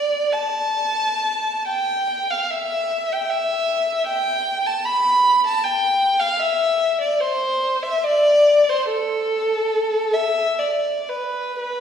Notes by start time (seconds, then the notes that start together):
Already playing: D5
0.33 A5
1.68 G5
2.31 F5
2.50 E5
3.12 G5
3.30 E5
4.07 G5
4.66 A5
4.85 B5
5.46 A5
5.64 G5
6.19 F5
6.40 E5
7.01 D5
7.21 C5
7.83 E5
8.04 D5
8.69 C5
8.89 A4
10.14 E5
10.59 D5
11.09 B4
11.61 B4